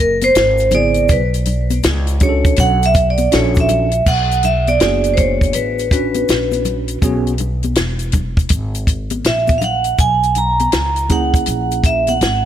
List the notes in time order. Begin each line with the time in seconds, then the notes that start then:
Already playing: F#1
0.00 A#4
0.21 C5, closed hi-hat, high conga, shaker
0.35 G#1, snare, closed hi-hat, shaker
0.58 closed hi-hat, shaker
0.71 C#3 B3 E4 G#4 D5, closed hi-hat, low conga, shaker
0.94 closed hi-hat, shaker
1.09 B1 B4, kick, closed hi-hat, shaker
1.34 closed hi-hat, shaker
1.45 closed hi-hat, low conga, shaker
1.70 closed hi-hat, high conga, shaker
1.83 C#2, snare, closed hi-hat, high conga, shaker
2.07 closed hi-hat, shaker
2.20 C#4 D4 F#4 G#4 C#5, kick, closed hi-hat, low conga, shaker
2.29 A4
2.45 kick, closed hi-hat, shaker
2.56 B1 F#5, kick, closed hi-hat, shaker
2.83 E5, closed hi-hat, shaker
2.94 kick, closed hi-hat, shaker
3.10 D5
3.17 closed hi-hat, high conga, shaker
3.32 A#1 C#4 D4 F#4 A4 C#5, snare, closed hi-hat, shaker
3.55 kick, closed hi-hat, shaker
3.60 E5
3.69 closed hi-hat, low conga, shaker
3.91 closed hi-hat, shaker
4.06 B1 F#5, kick, crash, shaker
4.31 closed hi-hat, shaker
4.43 E5, closed hi-hat, low conga, shaker
4.67 D5, closed hi-hat, high conga, shaker
4.80 F#1 B3 D4 F#4 G#4, snare, closed hi-hat, shaker
5.04 closed hi-hat, shaker
5.14 C5 C#5, closed hi-hat
5.18 kick, low conga, shaker
5.41 kick, closed hi-hat, shaker
5.53 A1 B4, closed hi-hat, shaker
5.79 closed hi-hat, shaker
5.91 C#4 D4 F#4 B4, kick, closed hi-hat, shaker
6.14 closed hi-hat, high conga, shaker
6.29 A#1, snare, closed hi-hat, shaker
6.52 closed hi-hat, high conga, shaker
6.65 closed hi-hat, low conga, shaker
6.88 closed hi-hat, shaker
7.02 B1 B3 C#4 F#4 G#4, kick, closed hi-hat, shaker
7.27 closed hi-hat, shaker
7.38 closed hi-hat, low conga, shaker
7.63 closed hi-hat, high conga, shaker
7.75 E1, snare, closed hi-hat, shaker
7.99 closed hi-hat, shaker
8.12 kick, closed hi-hat, low conga, shaker
8.37 kick, closed hi-hat, shaker
8.49 G#1, kick, closed hi-hat, shaker
8.74 closed hi-hat, shaker
8.87 kick, closed hi-hat, shaker
9.10 closed hi-hat, high conga, shaker
9.24 A#1 E5, snare, closed hi-hat, shaker
9.47 kick, closed hi-hat, high conga, shaker
9.58 F5, closed hi-hat, low conga, shaker
9.64 F#5
9.84 closed hi-hat, shaker
9.98 B1 G#5, kick, closed hi-hat, shaker
10.23 closed hi-hat, shaker
10.35 A#5, closed hi-hat, low conga, shaker
10.59 closed hi-hat, high conga, shaker
10.72 C#2, snare, closed hi-hat, shaker
10.96 closed hi-hat, shaker
11.09 A#3 C#4 E4 G#4 F#5, kick, closed hi-hat, low conga, shaker
11.34 kick, closed hi-hat, shaker
11.46 A#1, closed hi-hat, shaker
11.71 closed hi-hat, shaker
11.84 E5, kick, closed hi-hat, shaker
12.07 F#5, closed hi-hat, high conga, shaker
12.21 G#1 F#5, snare, closed hi-hat, shaker